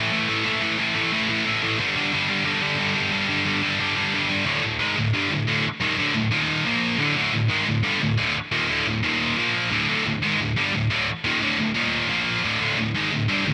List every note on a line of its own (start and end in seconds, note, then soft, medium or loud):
0.00 0.11 A2 medium
0.00 0.11 E3 medium
0.00 0.11 A3 loud
0.12 0.28 A2 loud
0.12 0.28 E3 loud
0.12 0.28 A3 loud
0.29 0.44 A2 medium
0.29 0.45 E3 medium
0.29 0.45 A3 loud
0.45 0.61 A2 medium
0.45 0.61 E3 loud
0.45 0.60 A3 loud
0.62 0.78 A2 medium
0.62 0.78 E3 medium
0.62 0.79 A3 loud
0.79 0.95 A2 loud
0.79 0.95 E3 loud
0.79 0.94 A3 loud
0.95 1.12 A2 medium
0.95 1.12 E3 medium
0.95 1.12 A3 loud
1.13 1.29 A2 loud
1.13 1.28 E3 loud
1.13 1.28 A3 loud
1.29 1.44 A2 medium
1.29 1.45 E3 medium
1.29 1.46 A3 medium
1.46 1.62 A2 loud
1.46 1.62 E3 loud
1.46 1.62 A3 loud
1.63 1.79 A2 medium
1.63 1.79 E3 medium
1.63 1.79 A3 loud
1.79 1.96 G2 loud
1.79 1.95 D3 loud
1.79 1.95 G3 loud
1.95 2.13 G2 medium
1.95 2.12 D3 medium
1.95 2.13 G3 medium
2.13 2.30 G2 loud
2.13 2.28 D3 loud
2.13 2.29 G3 loud
2.29 2.44 G2 medium
2.29 2.45 D3 medium
2.29 2.45 G3 loud
2.45 2.62 G2 loud
2.45 2.62 D3 loud
2.45 2.61 G3 loud
2.62 2.78 G2 medium
2.62 2.78 D3 medium
2.62 2.78 G3 medium
2.79 2.95 G2 loud
2.79 2.95 D3 loud
2.79 2.94 G3 loud
2.95 3.10 G2 medium
2.95 3.10 D3 medium
2.95 3.11 G3 loud
3.11 3.28 G2 medium
3.11 3.28 D3 medium
3.11 3.27 G3 loud
3.28 3.44 G2 medium
3.28 3.45 D3 medium
3.28 3.45 G3 loud
3.45 3.62 G2 loud
3.45 3.62 D3 loud
3.45 3.62 G3 loud
3.63 3.78 G2 medium
3.63 3.79 D3 medium
3.63 3.79 G3 medium
3.79 3.96 G2 medium
3.79 3.95 D3 medium
3.79 3.95 G3 loud
3.96 4.12 G2 medium
3.96 4.13 D3 medium
3.96 4.13 G3 medium
4.14 4.29 G2 loud
4.14 4.29 D3 loud
4.14 4.28 G3 loud
4.29 4.45 G2 medium
4.29 4.46 D3 medium
4.29 4.46 G3 medium
4.46 4.62 D2 medium
4.46 4.63 A2 loud
4.46 4.64 D3 loud
4.63 4.77 D2 medium
4.63 4.78 A2 medium
4.79 4.97 G#2 medium
4.79 4.97 D#3 medium
4.79 4.97 G#3 loud
4.97 5.11 D2 medium
4.97 5.11 A2 medium
5.14 5.31 G2 medium
5.14 5.31 D3 medium
5.14 5.31 G3 loud
5.31 5.45 D2 medium
5.31 5.45 A2 medium
5.48 5.65 D2 loud
5.48 5.65 A2 loud
5.48 5.65 D3 loud
5.81 5.97 D#2 loud
5.81 5.98 A#2 loud
5.81 5.98 D#3 loud
5.98 6.14 D2 medium
5.98 6.14 A2 medium
5.98 6.15 D3 loud
6.15 6.29 D2 medium
6.15 6.29 A2 medium
6.32 6.65 D#2 medium
6.32 6.65 A#2 loud
6.32 6.66 D#3 loud
6.66 6.99 A#2 medium
6.66 6.99 F3 medium
6.66 7.00 A#3 loud
6.99 7.15 D2 loud
6.99 7.15 A2 medium
6.99 7.16 D3 loud
7.16 7.32 D2 medium
7.16 7.32 A2 loud
7.16 7.33 D3 loud
7.33 7.47 D2 medium
7.33 7.47 A2 medium
7.50 7.66 G#2 medium
7.50 7.66 D#3 loud
7.50 7.67 G#3 loud
7.66 7.80 D2 medium
7.66 7.81 A2 medium
7.83 8.00 G2 medium
7.83 8.01 D3 loud
7.83 8.01 G3 loud
8.01 8.15 D2 medium
8.01 8.15 A2 medium
8.18 8.34 D2 loud
8.18 8.34 A2 loud
8.18 8.35 D3 loud
8.52 8.68 D#2 medium
8.52 8.68 A#2 loud
8.52 8.69 D#3 loud
8.68 8.85 D2 medium
8.68 8.85 A2 medium
8.68 8.86 D3 loud
8.86 9.00 D2 medium
8.86 9.00 A2 medium
9.03 9.36 D#2 medium
9.03 9.36 A#2 medium
9.03 9.37 D#3 loud
9.37 9.71 A#2 medium
9.37 9.71 F3 loud
9.37 9.71 A#3 loud
9.71 9.87 D2 medium
9.71 9.88 A2 loud
9.71 9.88 D3 loud
9.88 10.05 D2 loud
9.88 10.05 A2 loud
9.88 10.05 D3 loud
10.06 10.19 D2 medium
10.06 10.19 A2 medium
10.23 10.39 G#2 loud
10.23 10.39 D#3 medium
10.23 10.39 G#3 loud
10.40 10.53 D2 medium
10.40 10.53 A2 medium
10.56 10.73 G2 medium
10.56 10.73 D3 loud
10.56 10.73 G3 loud
10.73 10.87 D2 medium
10.73 10.87 A2 medium
10.90 11.07 D2 medium
10.90 11.07 A2 medium
10.90 11.07 D3 loud
11.24 11.41 D#2 medium
11.24 11.41 A#2 loud
11.24 11.41 D#3 loud
11.41 11.57 D2 medium
11.41 11.58 A2 loud
11.41 11.58 D3 loud
11.58 11.72 D2 medium
11.58 11.72 A2 medium
11.74 12.08 D#2 loud
11.74 12.08 A#2 medium
11.74 12.09 D#3 loud
12.09 12.43 A#2 medium
12.09 12.43 F3 medium
12.09 12.43 A#3 loud
12.43 12.59 D2 medium
12.43 12.60 A2 loud
12.43 12.60 D3 loud
12.60 12.77 D2 medium
12.60 12.77 A2 loud
12.60 12.77 D3 loud
12.78 12.91 D2 medium
12.78 12.91 A2 medium
12.95 13.11 G#2 medium
12.95 13.11 D#3 loud
12.95 13.11 G#3 loud
13.11 13.25 D2 medium
13.11 13.25 A2 medium
13.28 13.45 G2 medium
13.28 13.45 D3 loud
13.28 13.46 G3 loud
13.46 13.54 D2 medium
13.46 13.54 A2 medium